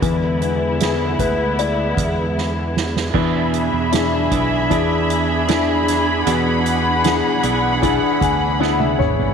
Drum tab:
CC |----------------|x---------------|----------------|
HH |x-x-x-x-x-x-----|--x-x-x-x-x-x-x-|x-x-x-x-x-x-----|
SD |----o-------o-oo|----o-------o-o-|----o-------o---|
T1 |----------------|----------------|-------------o--|
T2 |----------------|----------------|--------------o-|
FT |----------------|----------------|---------------o|
BD |o-----o---o-----|o-----o-o-------|--------o-o-----|